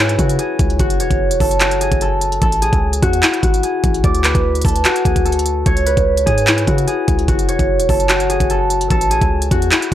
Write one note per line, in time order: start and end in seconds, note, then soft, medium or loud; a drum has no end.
0.00 0.17 G#2 loud
0.00 2.60 E4 medium
0.00 0.19 F#4 medium
0.00 0.38 G#4 medium
0.00 1.43 B4 medium
0.00 1.00 C#5 medium
0.09 closed hi-hat medium
0.19 0.38 C#3 loud
0.19 0.79 F#4 medium
0.19 kick medium
0.19 closed hi-hat medium
0.29 closed hi-hat medium
0.39 1.47 G#4 medium
0.39 closed hi-hat medium
0.59 0.79 C#2 loud
0.59 kick loud
0.59 closed hi-hat medium
0.70 closed hi-hat soft
0.79 1.01 F#1 loud
0.79 1.60 F#4 medium
0.79 kick loud
0.79 closed hi-hat medium
0.90 closed hi-hat medium
1.00 1.10 E1 medium
1.00 2.91 C#5 medium
1.00 closed hi-hat medium
1.11 1.32 F#1 loud
1.11 kick medium
1.11 closed hi-hat medium
1.31 1.40 E1 loud
1.31 closed hi-hat medium
1.40 1.90 F#1 loud
1.40 1.87 A4 medium
1.40 kick medium
1.40 open hi-hat medium
1.51 closed hi-hat medium
1.60 3.02 F#4 medium
1.60 clap loud
1.60 closed hi-hat medium
1.71 closed hi-hat medium
1.81 2.08 G#4 medium
1.81 closed hi-hat medium
1.92 2.40 F#1 loud
1.92 kick medium
1.92 closed hi-hat medium
2.01 2.42 A4 medium
2.01 closed hi-hat medium
2.21 closed hi-hat medium
2.32 closed hi-hat soft
2.42 2.72 A1 loud
2.42 2.68 A4 loud
2.42 kick loud
2.42 closed hi-hat medium
2.52 closed hi-hat medium
2.62 3.63 G#4 medium
2.62 closed hi-hat medium
2.73 3.01 C#2 loud
2.73 kick medium
2.73 closed hi-hat medium
2.93 closed hi-hat medium
3.02 3.22 E2 loud
3.02 3.43 F#4 medium
3.02 kick medium
3.02 closed hi-hat medium
3.13 closed hi-hat medium
3.23 5.84 E4 medium
3.23 clap loud
3.23 closed hi-hat medium
3.34 closed hi-hat medium
3.43 3.63 G#1 loud
3.43 4.85 F#4 medium
3.43 kick medium
3.43 closed hi-hat medium
3.54 closed hi-hat medium
3.63 4.71 G#4 medium
3.63 closed hi-hat medium
3.84 4.03 A1 loud
3.84 kick loud
3.84 closed hi-hat medium
3.94 closed hi-hat soft
4.04 4.34 D2 loud
4.04 5.72 D5 medium
4.04 kick loud
4.04 closed hi-hat medium
4.15 closed hi-hat medium
4.24 5.86 B4 medium
4.24 clap medium
4.24 closed hi-hat medium
4.35 4.64 D2 loud
4.35 kick medium
4.35 closed hi-hat medium
4.55 closed hi-hat soft
4.62 4.84 D2 loud
4.62 5.11 A4 medium
4.62 kick medium
4.62 closed hi-hat medium
4.62 open hi-hat medium
4.68 closed hi-hat medium
4.76 closed hi-hat medium
4.85 6.67 F#4 medium
4.85 clap loud
4.85 closed hi-hat medium
4.96 closed hi-hat medium
5.05 5.64 D2 loud
5.05 5.31 G#4 medium
5.05 kick medium
5.05 closed hi-hat medium
5.16 kick medium
5.16 closed hi-hat medium
5.25 6.32 A4 medium
5.25 closed hi-hat medium
5.32 closed hi-hat medium
5.39 closed hi-hat medium
5.46 closed hi-hat medium
5.66 5.96 C#2 loud
5.66 7.48 C#5 medium
5.66 kick loud
5.66 closed hi-hat medium
5.77 closed hi-hat medium
5.86 7.91 B4 medium
5.86 closed hi-hat medium
5.97 6.26 C#2 loud
5.97 kick medium
5.97 closed hi-hat medium
6.17 closed hi-hat medium
6.26 6.66 G#2 loud
6.26 6.87 G#4 medium
6.26 kick medium
6.26 closed hi-hat medium
6.38 closed hi-hat medium
6.47 9.09 E4 medium
6.47 clap loud
6.47 closed hi-hat medium
6.58 closed hi-hat medium
6.67 6.87 C#3 loud
6.67 7.28 F#4 medium
6.67 kick medium
6.67 closed hi-hat medium
6.78 closed hi-hat medium
6.87 7.95 G#4 medium
6.87 closed hi-hat medium
7.08 7.28 C#2 loud
7.08 kick loud
7.08 closed hi-hat medium
7.19 closed hi-hat soft
7.28 7.50 F#1 loud
7.28 8.09 F#4 medium
7.28 kick loud
7.28 closed hi-hat medium
7.39 closed hi-hat medium
7.49 7.59 E1 loud
7.49 9.40 C#5 medium
7.49 closed hi-hat medium
7.59 7.81 F#1 loud
7.59 kick medium
7.59 closed hi-hat medium
7.80 7.88 E1 medium
7.80 closed hi-hat medium
7.89 8.38 F#1 loud
7.89 8.35 A4 medium
7.89 kick medium
7.89 open hi-hat medium
8.00 closed hi-hat medium
8.09 9.51 F#4 medium
8.09 clap loud
8.09 closed hi-hat medium
8.20 closed hi-hat medium
8.29 8.56 G#4 medium
8.29 closed hi-hat medium
8.40 8.88 F#1 loud
8.40 kick medium
8.40 closed hi-hat medium
8.50 8.91 A4 medium
8.50 closed hi-hat medium
8.70 closed hi-hat medium
8.81 closed hi-hat soft
8.90 9.20 A1 loud
8.90 9.17 A4 loud
8.90 kick loud
8.90 closed hi-hat medium
9.01 closed hi-hat medium
9.11 9.94 G#4 medium
9.11 closed hi-hat medium
9.21 9.50 C#2 loud
9.21 kick medium
9.21 closed hi-hat medium
9.42 closed hi-hat medium
9.51 9.71 E2 loud
9.51 9.92 F#4 medium
9.51 kick medium
9.51 closed hi-hat medium
9.62 closed hi-hat medium
9.71 9.94 E4 medium
9.71 clap loud
9.71 closed hi-hat medium
9.82 closed hi-hat medium